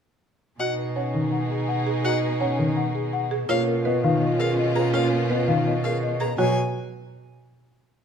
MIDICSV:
0, 0, Header, 1, 8, 480
1, 0, Start_track
1, 0, Tempo, 361446
1, 799, Time_signature, 4, 2, 24, 8
1, 10689, End_track
2, 0, Start_track
2, 0, Title_t, "Violin"
2, 0, Program_c, 0, 40
2, 794, Note_on_c, 0, 78, 63
2, 976, Note_off_c, 0, 78, 0
2, 2716, Note_on_c, 0, 78, 75
2, 2898, Note_off_c, 0, 78, 0
2, 4635, Note_on_c, 0, 77, 84
2, 4817, Note_off_c, 0, 77, 0
2, 5837, Note_on_c, 0, 77, 69
2, 6018, Note_off_c, 0, 77, 0
2, 6315, Note_on_c, 0, 82, 59
2, 6497, Note_off_c, 0, 82, 0
2, 6554, Note_on_c, 0, 77, 72
2, 6736, Note_off_c, 0, 77, 0
2, 7755, Note_on_c, 0, 77, 62
2, 7937, Note_off_c, 0, 77, 0
2, 8235, Note_on_c, 0, 82, 61
2, 8417, Note_off_c, 0, 82, 0
2, 8474, Note_on_c, 0, 80, 82
2, 8700, Note_off_c, 0, 80, 0
2, 10689, End_track
3, 0, Start_track
3, 0, Title_t, "Marimba"
3, 0, Program_c, 1, 12
3, 791, Note_on_c, 1, 75, 72
3, 1035, Note_on_c, 1, 71, 48
3, 1109, Note_off_c, 1, 75, 0
3, 1274, Note_on_c, 1, 78, 50
3, 1350, Note_off_c, 1, 71, 0
3, 1590, Note_off_c, 1, 78, 0
3, 1752, Note_on_c, 1, 78, 52
3, 1990, Note_on_c, 1, 68, 54
3, 2069, Note_off_c, 1, 78, 0
3, 2233, Note_on_c, 1, 78, 70
3, 2308, Note_off_c, 1, 68, 0
3, 2550, Note_off_c, 1, 78, 0
3, 2712, Note_on_c, 1, 75, 79
3, 2947, Note_on_c, 1, 71, 55
3, 3029, Note_off_c, 1, 75, 0
3, 3189, Note_on_c, 1, 78, 62
3, 3268, Note_off_c, 1, 71, 0
3, 3508, Note_off_c, 1, 78, 0
3, 3670, Note_on_c, 1, 78, 62
3, 3916, Note_on_c, 1, 68, 67
3, 3989, Note_off_c, 1, 78, 0
3, 4160, Note_on_c, 1, 78, 86
3, 4231, Note_off_c, 1, 68, 0
3, 4472, Note_off_c, 1, 78, 0
3, 4639, Note_on_c, 1, 73, 91
3, 4881, Note_on_c, 1, 70, 71
3, 4952, Note_off_c, 1, 73, 0
3, 5118, Note_on_c, 1, 75, 65
3, 5192, Note_off_c, 1, 70, 0
3, 5362, Note_on_c, 1, 77, 80
3, 5431, Note_off_c, 1, 75, 0
3, 5596, Note_on_c, 1, 75, 66
3, 5673, Note_off_c, 1, 77, 0
3, 5834, Note_on_c, 1, 68, 69
3, 5911, Note_off_c, 1, 75, 0
3, 6078, Note_on_c, 1, 75, 82
3, 6150, Note_off_c, 1, 68, 0
3, 6320, Note_on_c, 1, 71, 63
3, 6391, Note_off_c, 1, 75, 0
3, 6560, Note_on_c, 1, 73, 76
3, 6632, Note_off_c, 1, 71, 0
3, 6799, Note_on_c, 1, 70, 63
3, 6872, Note_off_c, 1, 73, 0
3, 7040, Note_on_c, 1, 75, 60
3, 7112, Note_off_c, 1, 70, 0
3, 7276, Note_on_c, 1, 77, 75
3, 7352, Note_off_c, 1, 75, 0
3, 7527, Note_on_c, 1, 75, 61
3, 7591, Note_off_c, 1, 77, 0
3, 7767, Note_on_c, 1, 68, 63
3, 7834, Note_off_c, 1, 75, 0
3, 8006, Note_on_c, 1, 75, 76
3, 8075, Note_off_c, 1, 68, 0
3, 8244, Note_on_c, 1, 71, 65
3, 8314, Note_off_c, 1, 75, 0
3, 8487, Note_on_c, 1, 73, 84
3, 8554, Note_off_c, 1, 71, 0
3, 8707, Note_off_c, 1, 73, 0
3, 10689, End_track
4, 0, Start_track
4, 0, Title_t, "Marimba"
4, 0, Program_c, 2, 12
4, 796, Note_on_c, 2, 66, 66
4, 1111, Note_off_c, 2, 66, 0
4, 1276, Note_on_c, 2, 73, 52
4, 1591, Note_off_c, 2, 73, 0
4, 2477, Note_on_c, 2, 68, 60
4, 2718, Note_on_c, 2, 66, 72
4, 2791, Note_off_c, 2, 68, 0
4, 3032, Note_off_c, 2, 66, 0
4, 3197, Note_on_c, 2, 73, 63
4, 3511, Note_off_c, 2, 73, 0
4, 4398, Note_on_c, 2, 68, 71
4, 4636, Note_on_c, 2, 65, 86
4, 4711, Note_off_c, 2, 68, 0
4, 4951, Note_off_c, 2, 65, 0
4, 5114, Note_on_c, 2, 71, 65
4, 5430, Note_off_c, 2, 71, 0
4, 5838, Note_on_c, 2, 70, 64
4, 6151, Note_off_c, 2, 70, 0
4, 6316, Note_on_c, 2, 68, 64
4, 6556, Note_on_c, 2, 65, 77
4, 6631, Note_off_c, 2, 68, 0
4, 6871, Note_off_c, 2, 65, 0
4, 7037, Note_on_c, 2, 71, 61
4, 7351, Note_off_c, 2, 71, 0
4, 7761, Note_on_c, 2, 70, 59
4, 8073, Note_off_c, 2, 70, 0
4, 8241, Note_on_c, 2, 68, 64
4, 8479, Note_on_c, 2, 66, 80
4, 8552, Note_off_c, 2, 68, 0
4, 8703, Note_off_c, 2, 66, 0
4, 10689, End_track
5, 0, Start_track
5, 0, Title_t, "French horn"
5, 0, Program_c, 3, 60
5, 803, Note_on_c, 3, 63, 62
5, 4349, Note_off_c, 3, 63, 0
5, 4643, Note_on_c, 3, 65, 78
5, 8188, Note_off_c, 3, 65, 0
5, 10689, End_track
6, 0, Start_track
6, 0, Title_t, "String section"
6, 0, Program_c, 4, 48
6, 800, Note_on_c, 4, 68, 56
6, 801, Note_on_c, 4, 63, 56
6, 4347, Note_off_c, 4, 63, 0
6, 4347, Note_off_c, 4, 68, 0
6, 4644, Note_on_c, 4, 65, 76
6, 4646, Note_on_c, 4, 61, 70
6, 8189, Note_off_c, 4, 65, 0
6, 8190, Note_off_c, 4, 61, 0
6, 10689, End_track
7, 0, Start_track
7, 0, Title_t, "Grand piano"
7, 0, Program_c, 5, 0
7, 1276, Note_on_c, 5, 61, 52
7, 1519, Note_on_c, 5, 51, 63
7, 1591, Note_off_c, 5, 61, 0
7, 1832, Note_off_c, 5, 51, 0
7, 3199, Note_on_c, 5, 61, 58
7, 3440, Note_on_c, 5, 51, 75
7, 3512, Note_off_c, 5, 61, 0
7, 3752, Note_off_c, 5, 51, 0
7, 4635, Note_on_c, 5, 58, 83
7, 4950, Note_off_c, 5, 58, 0
7, 5117, Note_on_c, 5, 59, 68
7, 5362, Note_on_c, 5, 51, 85
7, 5431, Note_off_c, 5, 59, 0
7, 5673, Note_off_c, 5, 51, 0
7, 6554, Note_on_c, 5, 58, 78
7, 6870, Note_off_c, 5, 58, 0
7, 7040, Note_on_c, 5, 59, 64
7, 7274, Note_on_c, 5, 51, 76
7, 7352, Note_off_c, 5, 59, 0
7, 7590, Note_off_c, 5, 51, 0
7, 8478, Note_on_c, 5, 54, 78
7, 8703, Note_off_c, 5, 54, 0
7, 10689, End_track
8, 0, Start_track
8, 0, Title_t, "Cello"
8, 0, Program_c, 6, 42
8, 798, Note_on_c, 6, 47, 53
8, 4490, Note_off_c, 6, 47, 0
8, 4642, Note_on_c, 6, 47, 67
8, 8332, Note_off_c, 6, 47, 0
8, 8482, Note_on_c, 6, 47, 67
8, 8704, Note_off_c, 6, 47, 0
8, 10689, End_track
0, 0, End_of_file